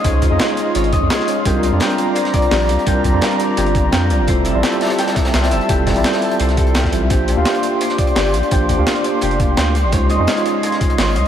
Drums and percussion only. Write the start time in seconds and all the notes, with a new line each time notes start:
0.04 kick, closed hi-hat
0.22 kick, closed hi-hat
0.39 snare, closed hi-hat
0.49 closed hi-hat
0.57 closed hi-hat
0.75 closed hi-hat
0.84 closed hi-hat
0.93 kick, closed hi-hat
1.10 snare, closed hi-hat
1.19 snare
1.28 closed hi-hat
1.45 kick, closed hi-hat
1.63 closed hi-hat
1.80 snare, closed hi-hat
1.90 closed hi-hat
1.98 closed hi-hat
2.15 closed hi-hat
2.25 snare, closed hi-hat
2.34 kick, closed hi-hat
2.42 closed hi-hat
2.51 snare, closed hi-hat, open hi-hat
2.69 closed hi-hat
2.79 closed hi-hat
2.86 kick, closed hi-hat
3.04 kick, closed hi-hat
3.21 snare, closed hi-hat
3.31 closed hi-hat
3.39 closed hi-hat
3.57 closed hi-hat
3.66 closed hi-hat
3.75 kick, closed hi-hat
3.92 snare, closed hi-hat
4.10 closed hi-hat
4.27 kick, closed hi-hat
4.45 closed hi-hat
4.63 snare, closed hi-hat
4.72 closed hi-hat
4.81 snare, closed hi-hat
4.85 snare, closed hi-hat
4.90 snare, closed hi-hat
4.98 snare, closed hi-hat
5.07 snare, closed hi-hat
5.15 kick, snare, closed hi-hat
5.25 snare, closed hi-hat
5.34 snare, closed hi-hat
5.43 snare, closed hi-hat
5.51 closed hi-hat
5.61 closed hi-hat
5.69 kick, closed hi-hat
5.87 kick, snare, closed hi-hat, open hi-hat
5.96 closed hi-hat
6.04 snare, closed hi-hat
6.13 snare, closed hi-hat, open hi-hat
6.22 closed hi-hat
6.31 closed hi-hat
6.40 closed hi-hat
6.49 snare, closed hi-hat
6.57 kick, closed hi-hat
6.67 closed hi-hat
6.74 snare, closed hi-hat
6.84 kick, snare
6.92 closed hi-hat
7.10 kick, closed hi-hat
7.28 closed hi-hat
7.45 snare, closed hi-hat
7.55 closed hi-hat
7.63 closed hi-hat
7.81 closed hi-hat
7.89 snare, closed hi-hat
7.98 kick, closed hi-hat
8.07 closed hi-hat
8.16 snare, closed hi-hat, open hi-hat
8.34 closed hi-hat
8.43 closed hi-hat
8.51 kick, closed hi-hat
8.69 kick, closed hi-hat
8.87 snare, closed hi-hat
8.96 closed hi-hat
9.04 closed hi-hat
9.21 closed hi-hat
9.31 closed hi-hat
9.40 kick, closed hi-hat
9.57 snare, closed hi-hat
9.75 closed hi-hat
9.92 kick, closed hi-hat
10.09 closed hi-hat
10.27 snare, closed hi-hat
10.37 closed hi-hat
10.46 closed hi-hat
10.63 closed hi-hat
10.72 snare, closed hi-hat
10.81 kick, closed hi-hat
10.90 closed hi-hat
10.98 snare, closed hi-hat, open hi-hat
11.16 closed hi-hat